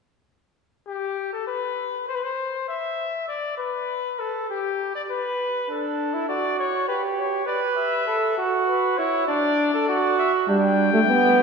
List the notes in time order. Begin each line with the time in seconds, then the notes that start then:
0.87 G4
1.33 A4
1.47 B4
2.08 C5
2.15 B4
2.23 C5
2.68 E5
3.28 D5
3.58 B4
4.19 A4
4.50 G4
4.95 D5
5.11 B4
5.69 D4 A4
6.14 E4
6.29 F#4 D5
6.59 C#5
6.88 G4 B4
7.18 C#5
7.46 B4 D5
7.77 E5
8.07 A4
8.38 F#4
8.68 B4
8.97 E4 C#5
9.27 D4 D5
9.74 A4
9.88 F#4 D5
10.18 E5
10.49 G3 D4 G5
10.94 A3
11.09 B3 G4